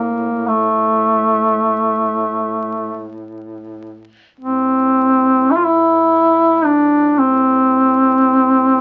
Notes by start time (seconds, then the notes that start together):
Already playing: A2 A#3
0.48 A3
4.38 A2 C4
5.51 E4
5.57 F4
5.66 E4
6.65 D4
7.19 C4